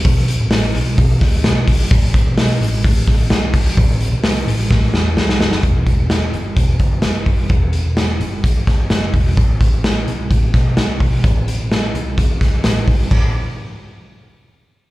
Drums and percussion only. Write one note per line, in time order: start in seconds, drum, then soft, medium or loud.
0.05 kick loud
0.05 hi-hat pedal medium
0.05 open hi-hat medium
0.28 hi-hat pedal medium
0.28 open hi-hat medium
0.51 snare loud
0.51 hi-hat pedal medium
0.51 open hi-hat medium
0.74 hi-hat pedal medium
0.74 open hi-hat medium
0.98 kick loud
0.98 hi-hat pedal medium
0.98 open hi-hat loud
1.21 kick loud
1.21 snare soft
1.21 hi-hat pedal medium
1.21 open hi-hat medium
1.44 snare loud
1.44 hi-hat pedal medium
1.44 open hi-hat loud
1.68 kick medium
1.68 hi-hat pedal medium
1.68 open hi-hat medium
1.91 kick loud
1.91 hi-hat pedal medium
1.91 open hi-hat medium
2.14 kick loud
2.14 hi-hat pedal medium
2.14 open hi-hat medium
2.38 snare loud
2.38 hi-hat pedal medium
2.38 open hi-hat medium
2.61 hi-hat pedal medium
2.61 open hi-hat medium
2.84 kick loud
2.84 hi-hat pedal medium
2.84 open hi-hat loud
3.07 kick medium
3.07 snare soft
3.07 hi-hat pedal medium
3.07 open hi-hat medium
3.30 snare loud
3.30 hi-hat pedal medium
3.30 open hi-hat loud
3.54 kick loud
3.54 hi-hat pedal medium
3.54 open hi-hat medium
3.77 kick loud
3.77 hi-hat pedal medium
3.77 open hi-hat medium
4.01 hi-hat pedal medium
4.01 open hi-hat medium
4.24 snare loud
4.24 hi-hat pedal medium
4.24 open hi-hat medium
4.48 hi-hat pedal medium
4.48 open hi-hat medium
4.71 kick loud
4.71 snare medium
4.94 snare medium
5.17 snare medium
5.29 snare medium
5.41 snare loud
5.51 snare loud
5.63 kick loud
5.63 closed hi-hat medium
5.87 kick medium
5.87 closed hi-hat medium
6.10 snare loud
6.10 closed hi-hat medium
6.33 closed hi-hat medium
6.57 kick medium
6.57 closed hi-hat medium
6.79 kick medium
6.79 closed hi-hat medium
7.02 snare loud
7.02 closed hi-hat medium
7.26 kick medium
7.26 open hi-hat medium
7.50 kick loud
7.50 closed hi-hat medium
7.73 closed hi-hat medium
7.97 snare loud
7.97 closed hi-hat medium
8.21 closed hi-hat medium
8.44 kick loud
8.44 closed hi-hat medium
8.67 kick medium
8.67 snare soft
8.67 closed hi-hat medium
8.90 snare loud
8.90 closed hi-hat medium
9.14 kick medium
9.14 open hi-hat medium
9.37 kick loud
9.37 closed hi-hat medium
9.61 kick medium
9.61 closed hi-hat medium
9.84 snare loud
9.84 closed hi-hat medium
10.08 closed hi-hat medium
10.31 kick medium
10.31 closed hi-hat medium
10.54 kick medium
10.54 snare soft
10.54 closed hi-hat medium
10.77 snare loud
10.77 closed hi-hat medium
11.00 kick medium
11.00 open hi-hat medium
11.24 kick loud
11.24 closed hi-hat medium
11.48 closed hi-hat medium
11.72 snare loud
11.72 closed hi-hat medium
11.95 closed hi-hat medium
12.18 kick loud
12.18 closed hi-hat medium
12.41 kick medium
12.41 snare soft
12.41 closed hi-hat medium
12.64 snare loud
12.64 closed hi-hat loud
12.88 kick medium
12.88 open hi-hat medium
13.11 kick loud
13.11 crash medium